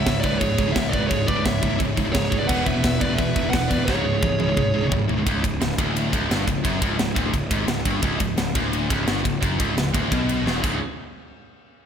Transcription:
Already playing: C#5 E5
0.06 C#1 C#2 G#2, kick, snare, crash
0.20 C#1 G#2 B4 D5, kick, crash
0.25 C#2
0.33 C#2 G#2
0.38 C#1 C#2 G#2 G#4 C#5, kick, crash
0.57 C#1 C#2 G#2, kick, crash
0.67 C#2 G#2
0.72 C#1 C#2 G#2 C#5 E5, kick, snare, crash
0.89 C#2 G#2 B4 D5
0.93 C#1, kick, crash
1.00 C#2 G#2
1.07 C#1 C#2 G#2 G#4 C#5, kick, crash
1.27 C#1 C#2 G#2 B4 D5, kick, crash
1.37 C#2 G#2
1.45 C#1 C#2 G#2 C#5 E5, kick, snare, crash
1.61 C#1 C#2 G#2, kick, crash
1.70 C#2 G#2
1.78 C#1 C#2 G#2, kick, crash
1.96 C#1 C#2 G#2, kick, crash
2.05 C#2 G#2
2.13 C#1 C#2 G#2 G#4 C#5, kick, snare, crash
2.31 C#1 C#2 G#2, kick, crash
2.39 C#2 G#2 B4 D5
2.47 E1 E2 B2 E3 B4 F#5, kick, crash
2.64 E1 E2 B2 B4 E5, kick, crash
2.74 E2 B2
2.84 E1 E2 B2, kick, snare, crash
2.99 E1 E2 B2 B4 D5, kick, crash
3.09 E2 B2
3.15 E2 B2 B4 E5, kick
3.19 E1, crash
3.34 E1 E2 B2, kick, crash
3.42 E2 B2
3.50 E1 E2 B2 B4 F#5, kick, crash
3.54 snare
3.68 E1 E2 B2 B4 D5, kick, crash
3.77 E2 B2
3.85 C#1 C#2 G#2 C#3 G#4 C#5, kick, snare
4.04 C#1 C#2 G#2
4.13 C#2 G#2
4.21 C#1 C#2 G#2, kick, high tom
4.39 C#1 C#2 G#2, high tom
4.47 C#2 G#2
4.56 C#1 C#2 G#2, kick, mid tom
4.74 C#1 C#2 G#2
4.83 C#2 G#2
4.91 C#1 C#2 G#2, kick, floor tom
5.08 C#1 C#2 G#2, floor tom
5.18 C#2 G#2
5.26 C#1 C#2, kick, ride
5.43 C#1 C#2, kick, ride
5.61 C#1 C#2, snare, ride
5.78 D1 D2, kick, ride
5.96 ride
6.12 C#1 C#2, kick, ride
6.30 G1 G2, snare, ride
6.47 C#1 C#2, kick, ride
6.64 F#1 F#2, kick, ride
6.81 C#1 C#2, kick, ride
6.98 C#1 C#2, snare, ride
7.15 D1 D2, kick, ride
7.33 C#1 C#2, kick, ride
7.51 G#1 G#2, kick, ride
7.67 C#1 C#2, snare, ride
7.85 G1 G2, kick, ride
8.02 C#1 C#2, kick, ride
8.20 C#1 C#2, kick, ride
8.37 C#1 C#2, snare, ride
8.55 D1 D2, kick, ride
8.73 ride
8.90 C#1 C#2, kick, ride
9.06 G1 G2, snare, ride
9.24 C#1 C#2, kick, ride
9.42 F#1 F#2, kick, ride
9.58 C#1 C#2, kick, ride
9.76 C#1 C#2, snare, ride
9.93 D1 D2, kick, ride
10.11 B1 B2, kick, ride
10.29 ride
10.45 E1 E2, snare
10.61 C#1 C#2 G#2 C#3, kick, crash

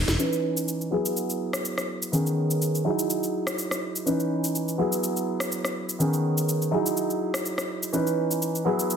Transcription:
Already playing: F#3 D#4 E4 G#4
0.08 E1, snare, closed hi-hat, tambourine, shaker
0.18 E3 C#4 D#4 B4, shaker
0.33 shaker
0.57 shaker
0.68 shaker
0.81 shaker
0.91 F#3 B3 E4 G#4
1.06 shaker
1.17 shaker
1.30 shaker
1.53 cross-stick, shaker
1.65 shaker
1.78 cross-stick, shaker
2.02 shaker
2.12 D#3 B3 C#4 G#4, shaker
2.27 shaker
2.51 shaker
2.62 shaker
2.75 shaker
2.84 F#3 D#4 E4 G#4
2.99 shaker
3.10 shaker
3.23 shaker
3.47 cross-stick, shaker
3.59 shaker
3.71 cross-stick, shaker
3.96 shaker
4.05 E3 C#4 D#4 B4, shaker
4.20 shaker
4.44 shaker
4.55 shaker
4.68 shaker
4.78 F#3 B3 E4 G#4
4.92 shaker
5.04 shaker
5.17 shaker
5.40 cross-stick, shaker
5.52 shaker
5.65 cross-stick, shaker
5.89 shaker
5.99 D#3 B3 C#4 G#4, shaker
6.13 shaker
6.38 shaker
6.49 shaker
6.62 shaker
6.71 F#3 D#4 E4 G#4
6.86 shaker
6.97 shaker
7.10 shaker
7.34 cross-stick, shaker
7.46 shaker
7.58 cross-stick, shaker
7.83 shaker
7.92 E3 C#4 D#4 B4, shaker
8.07 shaker
8.31 shaker
8.42 shaker
8.55 shaker
8.65 F#3 B3 E4 G#4
8.79 shaker
8.90 shaker

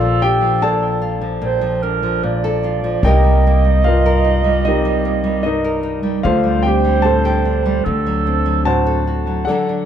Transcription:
Already playing: A#1 A#2 A#3 F4 A4 A#4 D5 F5
0.01 F3
0.22 D4 G4 G5
0.41 F3
0.62 A#2 A4 D5 A5
1.01 F4
1.21 F3
1.42 A#2 C5
1.61 F3
1.83 D4 A#4
2.03 F3
2.23 A#2 D5
2.44 A4
2.64 F4
2.84 F3
3.03 C2 C3 G3 A#3 D#4 G4 A#4 D#5 G5
3.07 A#4
3.24 G3
3.47 A#3
3.65 G3
3.84 G2 A#4 F5
3.88 F4
4.06 A#4
4.25 D#4
4.44 G3
4.65 C3 D#4 G4 A#4 D#5
4.85 G3
5.05 A#3
5.24 G3
5.43 G2 D#4 A#4 D#5
5.64 A#4
5.83 D#4
6.03 G3
6.23 D2 D3 F4 A4 C5 F5
6.44 G3
6.63 C4 G5
6.67 G4
6.85 G3
7.02 A2 A4 C5 A5
7.25 G4
7.45 D4
7.66 G3
7.85 D2 D3 A4
8.06 F#3
8.27 C4
8.46 F#3
8.65 A2 F#4 C5 F#5 A5
8.86 A4
9.06 F#4
9.27 F#3
9.45 D3 F#3 A4 D5 F#5
9.49 D4 F#4 A4
9.69 D4

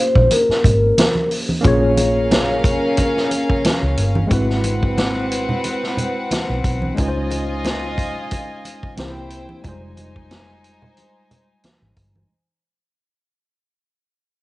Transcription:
Already playing: A#3 C#4 F4 G4 C5
0.00 C5
0.15 A#1, kick, low conga
0.31 A#4, closed hi-hat, muted conga
0.49 muted fingered electric bass stroke, snare
0.64 G#1, kick, closed hi-hat, muted conga, low conga
0.98 snare, closed hi-hat, high conga
1.15 high conga
1.31 open hi-hat
1.49 high conga
1.61 A#1 A#3 C#4 F4 A#4 F5, kick, closed hi-hat, muted conga
1.65 C#4 G#4 C#5
1.97 closed hi-hat, muted conga
2.31 snare, closed hi-hat, high conga
2.64 kick, closed hi-hat
2.97 kick, closed hi-hat, muted conga
3.17 snare
3.31 closed hi-hat, muted conga
3.50 kick
3.65 snare, closed hi-hat, high conga
3.82 C#2
3.97 G1, closed hi-hat
4.15 high conga
4.27 G#1 G#3 C4 E4 B4 F#5, kick, closed hi-hat, muted conga
4.32 F#4 B4
4.50 snare
4.64 closed hi-hat, muted conga
4.83 kick
4.98 snare, closed hi-hat, high conga
5.31 closed hi-hat
5.49 low conga
5.64 closed hi-hat, muted conga
5.83 snare
5.97 closed hi-hat, muted conga, low conga
6.31 snare, closed hi-hat, high conga
6.50 B1
6.64 B1, kick, closed hi-hat
6.82 high conga
6.95 C#2 G#3 C#4 D#4 F4 D#5, kick, closed hi-hat, muted conga
6.99 F4 B4 G#5
7.08 C5
7.31 closed hi-hat, muted conga
7.65 snare, closed hi-hat, high conga
7.98 kick, closed hi-hat
8.31 kick, closed hi-hat, muted conga
8.65 closed hi-hat, muted conga
8.83 kick
8.97 C2 A#3 C4 C#4 E4 G4 C5 G5, snare, closed hi-hat, high conga
9.05 E4
9.30 closed hi-hat
9.49 high conga
9.62 F1 G3 D#4 F4 C5 G#5, kick, closed hi-hat, muted conga
9.67 G3 G#3 C5
9.97 closed hi-hat, muted conga
10.16 kick
10.31 snare, closed hi-hat, high conga
10.64 closed hi-hat
10.82 low conga
10.97 closed hi-hat, muted conga
11.31 closed hi-hat, low conga
11.64 snare, closed hi-hat, high conga
11.82 G#1, high conga
11.97 G1, kick, closed hi-hat
12.15 high conga

